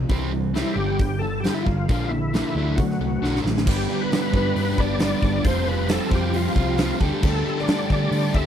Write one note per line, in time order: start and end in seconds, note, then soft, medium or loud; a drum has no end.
0.09 0.62 C2 medium
0.09 0.30 C3 medium
0.09 0.31 E3 medium
0.09 0.31 G3 medium
0.09 0.32 C4 medium
0.09 kick loud
0.09 open hi-hat soft
0.31 0.52 C3 medium
0.31 0.53 E3 medium
0.31 0.53 G3 medium
0.54 0.76 C3 medium
0.54 0.76 E3 medium
0.54 0.75 G3 medium
0.54 0.77 C4 medium
0.54 0.76 E4 medium
0.54 snare medium
0.54 open hi-hat soft
0.74 1.46 G1 loud
0.74 0.98 G2 medium
0.74 0.98 D3 loud
0.74 0.98 G3 loud
0.74 1.22 G4 loud
0.99 1.20 G2 medium
0.99 1.20 D3 medium
0.99 kick medium
0.99 open hi-hat soft
1.19 1.42 G2 medium
1.19 1.42 D3 medium
1.19 1.44 A4 loud
1.40 1.66 G2 medium
1.40 1.54 G4 medium
1.40 open hi-hat soft
1.45 1.66 D3 medium
1.45 1.66 G3 loud
1.45 snare loud
1.54 1.67 E4 medium
1.63 1.84 G1 medium
1.63 1.87 G2 medium
1.63 2.11 F4 medium
1.63 kick medium
1.68 1.88 D3 medium
1.89 2.41 A#1 medium
1.89 2.10 A#2 medium
1.89 2.10 D3 medium
1.89 2.11 F3 medium
1.89 2.11 A#3 medium
1.89 kick loud
1.89 open hi-hat soft
2.09 2.32 A#2 medium
2.09 2.32 D3 medium
2.09 2.80 E4 medium
2.33 2.55 A#2 medium
2.33 2.55 D3 medium
2.33 2.56 F3 medium
2.33 2.55 A#3 medium
2.33 snare loud
2.33 open hi-hat soft
2.55 2.78 D2 loud
2.55 2.77 D3 medium
2.55 2.78 F#3 medium
2.55 2.78 A3 medium
2.55 2.78 D4 medium
2.76 2.95 D3 medium
2.76 2.99 D3 medium
2.76 2.99 A3 medium
2.76 3.40 F#4 medium
2.76 kick loud
2.76 open hi-hat medium
2.80 3.00 F#3 medium
2.90 snare soft
2.99 3.20 C2 medium
2.99 3.21 D3 medium
2.99 3.22 F#3 medium
2.99 3.21 A3 medium
3.22 3.43 B1 medium
3.22 3.43 D3 medium
3.22 3.45 F#3 medium
3.22 3.44 A3 loud
3.22 3.44 D4 loud
3.22 snare medium
3.36 snare soft
3.44 3.65 A1 medium
3.44 3.65 D3 medium
3.44 3.67 F#3 medium
3.44 3.66 A3 medium
3.44 snare medium
3.58 snare medium
3.66 3.84 G1 medium
3.66 3.90 G2 medium
3.66 3.91 D3 medium
3.66 4.11 G3 medium
3.66 3.90 G3 medium
3.66 5.44 B3 medium
3.66 3.89 B3 medium
3.66 3.91 B3 medium
3.66 5.44 D4 medium
3.66 3.89 D4 medium
3.66 3.91 D4 medium
3.66 5.42 G4 medium
3.66 4.03 G4 medium
3.66 3.87 B4 medium
3.66 3.91 B4 medium
3.66 kick loud
3.66 crash loud
3.89 4.13 G3 medium
3.89 4.11 B3 medium
3.89 4.11 D4 medium
3.89 4.12 D4 medium
3.89 4.12 B4 medium
3.93 4.13 B3 medium
3.93 4.13 B4 medium
4.01 4.35 B4 medium
4.11 4.35 G2 medium
4.11 4.36 D3 medium
4.11 4.54 G3 medium
4.11 4.32 G3 medium
4.11 4.33 B3 medium
4.11 4.34 B3 medium
4.11 4.34 D4 medium
4.11 4.35 D4 medium
4.11 4.31 B4 medium
4.11 4.35 B4 medium
4.11 snare loud
4.11 open hi-hat soft
4.33 4.51 G2 medium
4.33 4.46 G3 medium
4.33 4.55 B3 medium
4.33 4.45 B3 medium
4.33 4.54 D4 medium
4.33 4.45 D4 medium
4.33 4.55 B4 medium
4.33 4.81 B4 loud
4.33 4.43 B4 medium
4.33 kick medium
4.45 4.69 G3 soft
4.45 4.68 B3 soft
4.45 4.67 D4 soft
4.45 4.66 B4 soft
4.55 4.74 G2 medium
4.55 4.99 G3 medium
4.55 4.78 B3 loud
4.55 4.78 D4 loud
4.55 4.77 B4 loud
4.55 open hi-hat medium
4.67 4.92 G3 soft
4.67 4.91 B3 soft
4.67 4.91 D4 soft
4.67 4.89 B4 medium
4.77 5.13 G1 medium
4.77 4.99 B3 medium
4.77 4.98 D4 medium
4.77 5.00 B4 medium
4.77 5.00 D5 loud
4.77 kick medium
4.82 5.03 G3 medium
4.90 5.02 G3 soft
4.90 5.02 B3 soft
4.90 5.02 D4 medium
4.90 5.02 B4 medium
4.99 5.25 G2 medium
4.99 5.25 D3 medium
4.99 5.44 G3 medium
4.99 5.22 G3 medium
4.99 5.45 B3 medium
4.99 5.44 D4 medium
4.99 5.45 B4 medium
4.99 5.48 D5 loud
4.99 snare loud
4.99 open hi-hat medium
5.03 5.23 B3 medium
5.03 5.24 D4 medium
5.03 5.25 B4 medium
5.22 5.40 G1 loud
5.22 5.35 G3 medium
5.22 5.36 B3 medium
5.22 5.35 D4 medium
5.22 kick medium
5.26 5.33 B4 medium
5.34 5.45 G3 soft
5.34 5.46 B3 soft
5.34 5.46 D4 soft
5.34 5.46 B4 medium
5.41 5.97 F1 medium
5.41 5.90 F3 medium
5.41 5.88 G3 medium
5.41 6.99 C4 medium
5.41 5.68 C4 medium
5.41 6.98 F4 medium
5.41 5.67 F4 loud
5.41 6.99 G4 medium
5.41 5.69 C5 loud
5.41 kick loud
5.41 open hi-hat medium
5.46 5.67 F3 medium
5.46 5.68 C4 medium
5.46 5.69 F4 medium
5.46 5.70 G4 medium
5.46 5.66 C5 medium
5.67 5.89 F3 medium
5.67 5.88 C4 medium
5.67 5.90 C4 medium
5.67 5.89 F4 medium
5.67 5.91 F4 medium
5.67 5.91 B4 loud
5.67 5.90 C5 medium
5.72 5.91 G4 medium
5.89 6.11 F3 medium
5.89 6.33 G3 medium
5.89 6.12 C4 medium
5.89 6.11 F4 medium
5.89 6.13 F4 medium
5.89 6.14 G4 medium
5.89 6.13 A4 medium
5.89 6.10 C5 medium
5.89 snare loud
5.89 open hi-hat medium
6.11 6.46 F2 medium
6.11 6.24 F3 medium
6.11 6.33 C4 medium
6.11 6.25 C4 medium
6.11 6.34 F4 medium
6.11 6.25 F4 medium
6.11 6.36 G4 medium
6.11 6.33 C5 medium
6.11 kick medium
6.15 6.60 G3 medium
6.15 6.25 G4 medium
6.26 6.49 C4 soft
6.26 6.47 F4 soft
6.26 6.46 G4 medium
6.33 6.79 F3 loud
6.33 6.78 G3 loud
6.33 6.57 C4 loud
6.33 6.55 F4 loud
6.33 6.99 F4 medium
6.33 6.54 C5 loud
6.33 open hi-hat medium
6.47 6.69 C4 soft
6.47 6.68 F4 soft
6.47 6.67 G4 medium
6.55 6.91 C2 medium
6.55 6.78 C4 medium
6.55 6.79 F4 medium
6.55 6.79 C5 medium
6.55 kick medium
6.60 6.79 G3 medium
6.68 6.78 C4 soft
6.68 6.79 F4 medium
6.68 6.80 G4 medium
6.78 7.00 F3 medium
6.78 7.02 G3 medium
6.78 7.01 C4 medium
6.78 7.01 F4 medium
6.78 7.02 F4 medium
6.78 7.01 G4 medium
6.78 7.00 C5 medium
6.78 snare loud
6.78 open hi-hat medium
7.00 7.10 D2 medium
7.00 7.20 D3 medium
7.00 7.12 G3 medium
7.00 7.22 G3 medium
7.00 8.46 A3 medium
7.00 7.13 D4 medium
7.00 8.46 D4 medium
7.00 7.23 G4 medium
7.00 7.12 G4 medium
7.00 8.46 G4 medium
7.00 7.23 A4 medium
7.00 7.10 A4 medium
7.00 kick medium
7.11 7.24 D4 soft
7.11 7.24 G4 medium
7.11 7.24 A4 soft
7.22 7.41 D2 medium
7.22 7.67 D3 medium
7.22 7.46 D3 medium
7.22 7.47 G3 loud
7.22 7.45 G3 medium
7.22 7.47 D4 medium
7.22 7.46 G4 loud
7.22 7.47 G4 medium
7.22 7.44 A4 loud
7.22 kick loud
7.22 crash medium
7.26 7.47 A4 medium
7.26 7.61 A4 medium
7.45 7.69 G3 medium
7.45 7.68 G3 medium
7.45 7.69 D4 medium
7.45 7.69 G4 medium
7.45 7.69 A4 medium
7.49 7.69 G4 medium
7.49 7.71 A4 medium
7.59 7.90 D5 medium
7.59 snare soft
7.68 8.11 D3 medium
7.68 7.91 D3 medium
7.68 7.93 G3 medium
7.68 7.89 G3 medium
7.68 7.90 D4 medium
7.68 7.91 G4 medium
7.68 7.90 A4 medium
7.68 snare loud
7.68 open hi-hat medium
7.72 7.92 A4 medium
7.90 8.08 D3 loud
7.90 8.02 G3 medium
7.90 8.13 G3 medium
7.90 8.02 D4 medium
7.90 8.13 G4 medium
7.90 8.02 G4 medium
7.90 8.13 A4 medium
7.90 8.01 A4 medium
7.90 8.38 D5 loud
7.90 kick medium
8.03 8.26 D4 soft
8.03 8.25 G4 soft
8.03 8.24 A4 medium
8.11 8.29 D3 medium
8.11 8.46 D3 medium
8.11 8.36 G3 loud
8.11 8.35 G4 loud
8.11 8.33 A4 loud
8.11 open hi-hat medium
8.25 8.46 D4 soft
8.25 8.46 G4 soft
8.25 8.45 A4 medium
8.34 8.46 D2 loud
8.34 8.46 G3 medium
8.34 8.46 G4 medium
8.34 8.46 A4 medium
8.34 8.46 E5 loud
8.34 kick medium
8.39 8.46 D4 medium